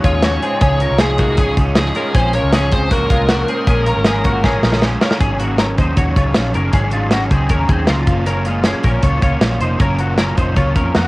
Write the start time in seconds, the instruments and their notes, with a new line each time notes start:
0.04 fingered electric bass D#2, clean electric guitar G#3 F4, overdriven electric guitar G#3 D#4 F4, french horn C#4, lead electric guitar C#5, kick, closed hi-hat
0.23 overdriven electric guitar F3 G#3 D#4 F4, clean electric guitar C#4 F#4, snare, closed hi-hat
0.41 overdriven electric guitar G#3 D#4 F4, clean electric guitar C4 G#4, closed hi-hat
0.61 fingered electric bass C#2, overdriven electric guitar C#3 F3 G#3 D#4 F4, clean electric guitar C#4 G#4, french horn C#4, lead electric guitar C#5, kick, closed hi-hat
0.80 overdriven electric guitar G#3 D#4 F4, clean electric guitar C#4 A#4, closed hi-hat
0.91 fingered electric bass C2
0.99 overdriven electric guitar F3 G#3 D#4, french horn G#3, clean electric guitar C#4 G#4, lead electric guitar G#4, snare, closed hi-hat
1.03 overdriven electric guitar F4
1.18 clean electric guitar A#3 F#4, overdriven electric guitar D#4 F4, kick, closed hi-hat
1.22 overdriven electric guitar G#3
1.37 overdriven electric guitar C#3 F3 G#3 D#4 F4, clean electric guitar C#4 G#4, kick, closed hi-hat
1.57 fingered electric bass C#2, overdriven electric guitar G#3 D#4 F4, kick, closed hi-hat
1.75 overdriven electric guitar F3 G#3 D#4 F4, french horn G#3, lead electric guitar G#4, snare, closed hi-hat
1.94 overdriven electric guitar G#3 D#4 F4, clean electric guitar C#4 A#4, closed hi-hat
2.14 fingered electric bass A#1, overdriven electric guitar A#2 F3 G#3 C#4 F4, french horn C4, clean electric guitar C#4 G#4, lead electric guitar C5, kick, closed hi-hat
2.32 overdriven electric guitar G#3 C#4 F4, french horn C#4, clean electric guitar C#4 A#4, lead electric guitar C#5, closed hi-hat
2.43 fingered electric bass C#2
2.52 overdriven electric guitar F3 G#3 C#4 F4, clean electric guitar C#4 G#4, snare, closed hi-hat
2.71 overdriven electric guitar G#3 C#4 F4, french horn C4, lead electric guitar C5, kick, closed hi-hat
2.90 overdriven electric guitar A#2 F3 G#3 C#4 F4, french horn A#3, clean electric guitar A#3 F#4, lead electric guitar A#4, kick, closed hi-hat
3.10 fingered electric bass C2, clean electric guitar G#3 F4, overdriven electric guitar G#3 C#4 F4, kick, closed hi-hat
3.29 overdriven electric guitar F3 G#3 C#4 F4, clean electric guitar A#3 F#4, snare, closed hi-hat
3.48 overdriven electric guitar G#3 C#4 F4, clean electric guitar C4 G#4, closed hi-hat
3.67 fingered electric bass A#1, overdriven electric guitar A#2 F3 G#3 C#4 F4, clean electric guitar C#4 G#4, kick, closed hi-hat
3.87 overdriven electric guitar G#3 C#4 F4, clean electric guitar C#4 A#4, closed hi-hat
3.96 fingered electric bass G#1
4.05 overdriven electric guitar F3 G#3 C#4, clean electric guitar C#4 G#4, snare, closed hi-hat
4.09 overdriven electric guitar F4
4.24 overdriven electric guitar G#3 C#4 F4, clean electric guitar A#3 F#4, kick, closed hi-hat
4.44 overdriven electric guitar A#2 F3 G#3 C#4 F4, clean electric guitar C#4 G#4, kick, snare
4.61 fingered electric bass A#1, overdriven electric guitar G#3 C#4 F4, snare
4.72 snare
4.81 overdriven electric guitar F3 G#3 C#4 F4, snare
5.00 overdriven electric guitar G#3 C#4 F4, clean electric guitar C#4 A#4, snare
5.11 snare
5.19 fingered electric bass G#1, overdriven electric guitar G#2 C#3 F#3 C#4 D#4 G#4, clean electric guitar C#4 G#4, kick, closed hi-hat
5.38 overdriven electric guitar F#3 C#4 D#4 G#4, clean electric guitar A#3 F#4, closed hi-hat
5.58 overdriven electric guitar F#3 C#4 D#4 G#4, clean electric guitar C#4 A#4, snare, closed hi-hat
5.77 fingered electric bass D#2, overdriven electric guitar F#3 C#4 D#4 G#4, clean electric guitar D#4 C5, kick, closed hi-hat
5.96 fingered electric bass D#2, overdriven electric guitar G#2 C#3 F#3 C#4 D#4 G#4, clean electric guitar F#4 C#5, kick, closed hi-hat
6.15 fingered electric bass C#2, overdriven electric guitar F#3 C#4 D#4 G#4, clean electric guitar F4 C#5, kick, closed hi-hat
6.34 fingered electric bass A#1, overdriven electric guitar F#3 C#4 D#4 G#4, snare, closed hi-hat
6.53 fingered electric bass F#1, overdriven electric guitar F#3 C#4 D#4 G#4, clean electric guitar C#4 A#4, closed hi-hat
6.72 fingered electric bass G#1, overdriven electric guitar G#2 C#3 F#3 C#4 D#4 G#4, clean electric guitar C#4 G#4, kick, closed hi-hat
6.91 overdriven electric guitar F#3 C#4 D#4 G#4, clean electric guitar G#3 F4, closed hi-hat
7.11 overdriven electric guitar F#3 C#4 D#4 G#4, clean electric guitar C#4 F#4, snare, closed hi-hat
7.31 fingered electric bass C#2, overdriven electric guitar F#3 C#4 D#4 G#4, clean electric guitar C4 G#4, kick, closed hi-hat
7.49 fingered electric bass D#2, overdriven electric guitar G#2 C#3 F#3 C#4 D#4 G#4, clean electric guitar C#4 A#4, kick, closed hi-hat
7.69 fingered electric bass D#2, overdriven electric guitar F#3 C#4 D#4 G#4, clean electric guitar C4 G#4, kick, closed hi-hat
7.87 fingered electric bass C#2, overdriven electric guitar F#3 C#4 D#4, clean electric guitar A#3 F4, snare, closed hi-hat
7.92 overdriven electric guitar G#4
8.07 fingered electric bass F#1, overdriven electric guitar A#3 C#4 F4, kick, closed hi-hat
8.26 overdriven electric guitar F#3 A#3 C#4 F4, clean electric guitar C#4 A#4, closed hi-hat
8.45 clean electric guitar G#3 F4, overdriven electric guitar A#3 C#4 F4, closed hi-hat
8.64 overdriven electric guitar F#3 A#3 C#4 F4, clean electric guitar C#4 G#4, snare, closed hi-hat
8.83 fingered electric bass A#1, overdriven electric guitar A#3 C#4 F4, clean electric guitar C#4 A#4, kick, closed hi-hat
9.02 fingered electric bass C#2, overdriven electric guitar F#3 A#3 C#4 F4, clean electric guitar F4 C#5, kick, closed hi-hat
9.21 fingered electric bass C#2, overdriven electric guitar A#3 C#4 F4, clean electric guitar F4 C#5, kick, closed hi-hat
9.41 fingered electric bass A#1, overdriven electric guitar F#3 A#3 C#4 F4, snare, closed hi-hat
9.60 fingered electric bass F1, overdriven electric guitar A#3 C#4 F4, clean electric guitar D#4 C5, closed hi-hat
9.78 fingered electric bass F#1, overdriven electric guitar F#3 A#3 C#4 F4, clean electric guitar C#4 A#4, kick, closed hi-hat
9.98 clean electric guitar A#3 F#4, overdriven electric guitar A#3 C#4 F4, closed hi-hat
10.17 overdriven electric guitar F#3 A#3 C#4 F4, clean electric guitar C#4 A#4, snare, closed hi-hat
10.35 fingered electric bass F1, overdriven electric guitar A#3 C#4 F4, clean electric guitar D#4 C5, kick, closed hi-hat
10.55 fingered electric bass C#2, overdriven electric guitar F#3 A#3 C#4 F4, clean electric guitar F4 C#5, kick, closed hi-hat
10.75 fingered electric bass F2, overdriven electric guitar A#3 C#4 F4, clean electric guitar C#4 A#4, kick, closed hi-hat
10.94 fingered electric bass F2, overdriven electric guitar F#3 A#3 C#4 F4, clean electric guitar A#3 F#4, snare, closed hi-hat